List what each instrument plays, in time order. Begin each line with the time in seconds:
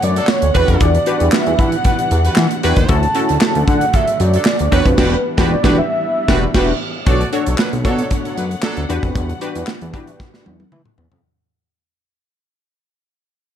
Already playing: string section D3 A3 B3 C#5 F#5
0.02 analog synth bass F#2, soft synth lead D5, closed hi-hat
0.16 horn section F#3 D4 A4, closed hi-hat
0.27 soft synth lead C#5, snare, clap
0.42 analog synth bass D2, closed hi-hat
0.54 analog synth bass E2, string section E3 G3 B3 D4, horn section G3 F#4 B4, analog polysynth D4 F#4 G4 B4, soft synth lead B4, kick, closed hi-hat
0.68 analog synth bass F2, kick, closed hi-hat
0.80 analog synth bass E2, soft synth lead D5, kick, closed hi-hat
0.95 closed hi-hat
1.06 analog polysynth D4 F#4 G4 B4, soft synth lead D5, closed hi-hat
1.20 analog synth bass E2, closed hi-hat
1.32 soft synth lead E5, snare, clap
1.46 analog synth bass E2, closed hi-hat
1.59 analog synth bass E3, soft synth lead F#5, kick, closed hi-hat
1.72 closed hi-hat
1.84 horn section G3 F#4 B4, soft synth lead F#5, kick, closed hi-hat
1.99 closed hi-hat
2.11 analog synth bass E2, closed hi-hat
2.25 horn section G3 F#4 B4, closed hi-hat
2.36 analog synth bass E3, snare, clap
2.51 closed hi-hat
2.63 analog synth bass E2, horn section F#3 D4 B4, analog polysynth D4 F#4 G4 B4, closed hi-hat
2.76 analog synth bass D#2, kick, closed hi-hat
2.89 analog synth bass D2, string section C#3 D3 F#3 A3, analog polysynth C#4 E4 F#4 A4, soft synth lead A5, kick, closed hi-hat
3.03 closed hi-hat
3.15 analog polysynth C#4 E4 F#4 A4, closed hi-hat
3.29 analog synth bass D2, closed hi-hat
3.41 snare, clap
3.55 analog synth bass D2, closed hi-hat
3.68 analog synth bass D3, soft synth lead F#5, kick, closed hi-hat
3.81 closed hi-hat
3.93 horn section F#3 D4 A4, soft synth lead E5, kick, closed hi-hat
4.07 closed hi-hat
4.20 analog synth bass F#2, soft synth lead D5, closed hi-hat
4.34 horn section F#3 D4 A4, closed hi-hat
4.45 snare, clap
4.59 analog synth bass D2, closed hi-hat
4.71 analog synth bass E2, string section E3 G3 B3 D4, horn section G3 F#4 B4, analog polysynth D4 F#4 G4 A#4, soft synth lead C#5, kick, closed hi-hat
4.78 analog polysynth B4
4.86 analog synth bass F2, soft synth lead B4, kick, closed hi-hat
4.97 analog synth bass E1, horn section G3 F#4 B4, analog polysynth D4 F#4 G4, kick, snare, crash
5.05 analog polysynth B4
5.37 analog synth bass E1, horn section G3 F#4 B4, analog polysynth D4 F#4 G4 B4, kick, snare
5.52 soft synth lead D5
5.64 analog synth bass E1, horn section G3 F#4 B4, analog polysynth D4 F#4 G4 B4, kick, snare
5.78 soft synth lead E5
6.28 analog synth bass E1, horn section G3 F#4 B4, analog polysynth D4 F#4 G4 B4, kick, snare
6.54 analog synth bass E1, horn section G3 F#4 B4, analog polysynth D4 F#4 G4 B4, kick, snare, crash
7.06 analog synth bass B1, string section D3 A3 B3 C#5 F#5, horn section A3 F#4 D5, analog polysynth D4 F#4 A4 C#5, kick, closed hi-hat
7.21 closed hi-hat
7.33 analog polysynth D4 F#4 A4 C#5, closed hi-hat
7.46 analog synth bass B1, horn section F#3 D4 A4, closed hi-hat
7.58 horn section F#3 D4 B4, snare, clap
7.73 analog synth bass B1, closed hi-hat
7.85 analog synth bass B2, horn section F#3 D4 A4, analog polysynth D4 F#4 A4 C#5, kick, closed hi-hat
7.98 closed hi-hat
8.11 kick, closed hi-hat
8.25 horn section F#3 D4 A4, closed hi-hat
8.37 analog synth bass F#2, horn section F#3 D4 B4, closed hi-hat
8.51 closed hi-hat
8.62 horn section F#3 D4 A4, snare, clap
8.77 analog synth bass D2, closed hi-hat
8.89 analog synth bass E2, string section E3 G3 D4, analog polysynth D4 F#4 G4 B4, closed hi-hat
9.03 analog synth bass F2, kick, closed hi-hat
9.15 analog synth bass E2, kick, closed hi-hat
9.29 closed hi-hat
9.41 analog polysynth D4 F#4 G4 B4, closed hi-hat
9.55 analog synth bass E2, closed hi-hat
9.67 snare, clap
9.81 analog synth bass E2, closed hi-hat
9.93 analog synth bass E3, analog polysynth D4 F#4 G4 B4, kick, closed hi-hat
10.07 closed hi-hat
10.20 kick, snare
10.34 snare
10.46 analog synth bass E2, high tom
10.60 high tom
10.72 analog synth bass E3, mid tom
10.85 mid tom
10.98 analog synth bass E2, floor tom
11.12 analog synth bass F2, floor tom